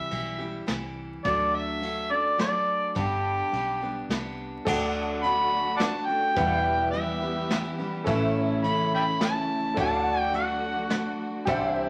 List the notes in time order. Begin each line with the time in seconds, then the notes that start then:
Already playing: C3 E4 G4 E5
0.11 B1 E3 G3 E4 G4, ride
0.38 G3 E4 G4
0.67 C2 E3 G3 E4 G4, snare, ride
1.25 D2 D3 F#3 A3 D4 F#4 D5, kick, ride
1.55 E5
1.81 F#3 A3 D4 F#4, ride
2.10 A3 D4 F#4 D5
2.38 F#3 A3 D4 F#4 D5, snare, ride
2.95 G1 G2 D3 G3 B3 D4 G4, kick, ride
3.52 B1 G3 B3 D4 G4, ride
3.81 G3 B3 D4 G4
4.09 C2 G3 B3 D4 G4, snare, ride
4.65 D2 D3 F#3 A3 D4 F#4 A4 D5 F#5 G5, kick, crash
4.88 F#5
5.23 D3 A3 D4 F#4 B5, closed hi-hat
5.77 D3 D5 F#5 A5, snare, closed hi-hat
5.81 A3 D4 F#4
6.06 D4 F#4 G5
6.10 A3
6.35 E2 B2 E3 G3 B3 E4 G4 B4 E5 F#5, kick, closed hi-hat
6.63 E5
6.91 E3 G3 B3 E5, closed hi-hat
6.96 E4
7.21 E3 G3 B3 E4
7.50 E3 G3 B3 E4, snare, closed hi-hat
7.78 E3 G3 B3 E4
8.04 A1 A2 C#3 E3 A3 C#4 E4 A4 B4 C#5 E5, kick, closed hi-hat
8.32 C#5
8.63 E3 A3 C#4 E4 B5, closed hi-hat
8.95 E5 G5 B5
9.19 E3 A3 C#4 E4, snare, closed hi-hat
9.24 A5
9.74 D2 D3 F#3 A3 D4 F#4 A4 C#5 D5 E5 F#5, kick, closed hi-hat
9.79 F#4 A5
9.97 D5
10.03 F#5
10.33 D3 A3 D4 F#4 F#5, closed hi-hat
10.89 D3 A3 D4 F#4, snare, closed hi-hat
11.45 C2 C3 D3 E3 G3 C4 D4 E4 G4 C5 D5 E5 F#5, kick, closed hi-hat
11.73 C5 E5